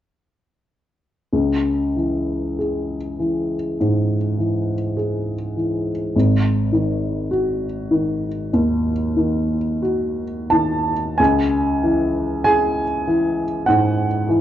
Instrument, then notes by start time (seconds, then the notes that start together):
upright piano
1.33 C#2
1.96 E3
2.59 G#4
3.20 E3
3.80 G#2
4.38 E3
4.97 G#4
5.56 E3
6.16 G#1
6.72 D#3
7.31 F#4
7.91 D#3
8.53 D#2
9.17 D#3
9.82 F#4
10.50 D#3 A5
11.18 C#2 G#5
11.83 E3
12.44 G#4 G#5
13.07 E3
13.66 G#2 F#5
14.29 E3